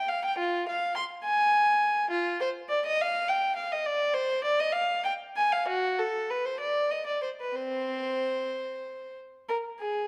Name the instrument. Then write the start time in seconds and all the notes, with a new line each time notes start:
violin
0.08 F5
0.25 G5
0.38 F4
0.69 F5
0.96 C6
1.24 G#5
2.10 F4
2.41 C5
2.69 D5
2.86 D#5
3.01 F5
3.28 G5
3.56 F5
3.72 D#5
3.86 D5
4.14 C5
4.44 D5
4.60 D#5
4.73 F5
5.04 G5
5.37 G#5
5.52 F5
5.68 F#4
5.99 A4
6.30 B4
6.45 C5
6.60 D5
6.91 D#5
7.07 D5
7.22 C5
7.41 B4
7.55 C4 C5
9.49 A#4
9.79 G#4